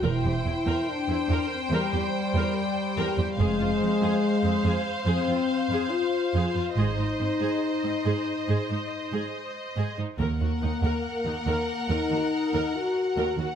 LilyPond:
<<
  \new Staff \with { instrumentName = "Violin section" } { \time 4/4 \key aes \mixolydian \tempo 4 = 71 g''1 | f''1 | ees''2.~ ees''8. r16 | ges''1 | }
  \new Staff \with { instrumentName = "Violin section" } { \time 4/4 \key aes \mixolydian c''1 | c''1 | c''2.~ c''8. r16 | bes'1 | }
  \new Staff \with { instrumentName = "Viola section" } { \time 4/4 \key aes \mixolydian bes'16 g'16 e'16 bes'16 r16 e'16 bes'16 r16 bes'16 g'16 r16 bes'16 r8 bes'16 g'16 | aes'16 f'16 c'16 aes'16 r16 c'16 aes'16 r16 aes'16 f'16 r16 aes'16 r8 aes'16 f'16 | aes'16 ees'16 c'16 aes'16 r16 c'16 aes'16 r16 aes'16 ees'16 r16 aes'16 r8 aes'16 ees'16 | bes'16 ges'16 ees'16 bes'16 r16 ees'16 bes'16 r16 bes'16 ges'16 r16 bes'16 r8 bes'16 ges'16 | }
  \new Staff \with { instrumentName = "French horn section" } { \time 4/4 \key aes \mixolydian e'4 d'8. c'16 g2 | aes2 c'4 f'4 | ees'2. r4 | bes2 ees'4 ges'8. ges'16 | }
  \new Staff \with { instrumentName = "Cello section" } { \clef bass \time 4/4 \key aes \mixolydian e,16 e,16 e,16 e,16 r16 e,16 e,16 r16 e,16 e,16 r16 e,16 r8 e,16 e,16 | f,16 f,16 f,16 f,16 r16 f,16 f,16 r16 f,16 f,16 r16 f,16 r8 f,16 f,16 | aes,16 aes,16 aes,16 aes,16 r16 aes,16 aes,16 r16 aes,16 aes,16 r16 aes,16 r8 aes,16 aes,16 | ees,16 ees,16 ees,16 ees,16 r16 ees,16 ees,16 r16 ees,16 ees,16 r16 ees,16 r8 ees,16 ees,16 | }
  \new Staff \with { instrumentName = "Double bass section" } { \clef bass \time 4/4 \key aes \mixolydian e,,16 r2. r8. | f,,16 r2. r8. | aes,,16 r2. r8. | ees,16 r2. r8. | }
>>